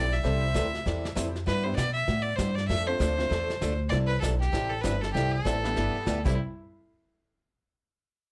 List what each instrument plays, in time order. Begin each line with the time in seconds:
Already playing: upright bass B1, honky-tonk piano C4 E4 G4 A4 D5, fiddle D5
0.13 fiddle E5, snare
0.23 upright bass C2, steel-string acoustic guitar C3 E3 G3 C4 E4 A4, honky-tonk piano C4 E4 G4 A4 C5, brush sweep, kick, snare
0.54 upright bass D2, steel-string acoustic guitar C3 E3 G3 C4 E4 A4, kick, snare, hi-hat pedal
0.75 snare
0.86 upright bass E2, steel-string acoustic guitar C3 E3 G3 C4 E4 A4, brush sweep, kick, snare
1.05 snare
1.15 upright bass F2, steel-string acoustic guitar C3 E3 G3 C4 E4 A4, honky-tonk piano C4 E4 G4 A4 C5, kick, snare, hi-hat pedal
1.36 snare
1.46 upright bass G2, steel-string acoustic guitar G3 B3 E4 G4, fiddle B4, brush sweep, kick, snare
1.63 honky-tonk piano B3 D4 E4 G4 B4, fiddle C5
1.76 upright bass B2, steel-string acoustic guitar G3 B3 E4 G4, fiddle D5, kick, snare, hi-hat pedal
1.93 fiddle E5
2.08 upright bass A2, steel-string acoustic guitar G3 B3 E4 G4, brush sweep, kick, snare
2.22 fiddle D5
2.36 upright bass G2, steel-string acoustic guitar G3 B3 E4 G4, fiddle C5, kick, snare, hi-hat pedal
2.55 fiddle D5, snare
2.68 upright bass F2, steel-string acoustic guitar F3 A3 D4 A4, fiddle E5, brush sweep, kick, snare
2.87 honky-tonk piano A3 C4 D4 F4 A4, fiddle C5
2.99 upright bass D2, steel-string acoustic guitar F3 A3 D4 A4, kick, snare, hi-hat pedal
3.17 honky-tonk piano A3 C4 D4 F4 C5, snare
3.29 upright bass E2, steel-string acoustic guitar F3 A3 D4 A4, brush sweep, kick, snare
3.50 snare
3.61 upright bass D2, steel-string acoustic guitar F3 A3 D4 A4, kick, snare, hi-hat pedal
3.89 upright bass C2, steel-string acoustic guitar C3 E3 G3 C4 E4 A4, fiddle D5, brush sweep, kick, snare
4.07 fiddle B4
4.20 upright bass B1, steel-string acoustic guitar C3 E3 G3 C4 E4 A4, fiddle A4, kick, snare, hi-hat pedal
4.39 fiddle G4, snare
4.52 upright bass A1, steel-string acoustic guitar C3 E3 G3 C4 E4 A4, brush sweep, kick, snare
4.69 fiddle A4
4.81 upright bass G1, steel-string acoustic guitar C3 E3 G3 C4 E4 A4, fiddle B4, kick, snare, hi-hat pedal
5.01 fiddle A4, snare
5.13 upright bass C2, steel-string acoustic guitar C3 E3 G3 C4 E4 A4, fiddle G4, brush sweep, kick, snare
5.31 fiddle A4
5.45 upright bass A1, steel-string acoustic guitar C3 E3 G3 C4 E4 A4, kick, snare, hi-hat pedal
5.63 honky-tonk piano G3 B3 D4 E4 G4, snare
5.76 upright bass G1, steel-string acoustic guitar G3 B3 E4 G4, brush sweep, kick, snare
5.95 muted upright bass stroke
6.06 upright bass D2, steel-string acoustic guitar G3 B3 E4 G4, kick, snare, hi-hat pedal
6.25 upright bass C2, steel-string acoustic guitar C3 E3 G3 C4 E4 A4, honky-tonk piano G3 A3 C4 E4 G4, fiddle E4, kick, snare, crash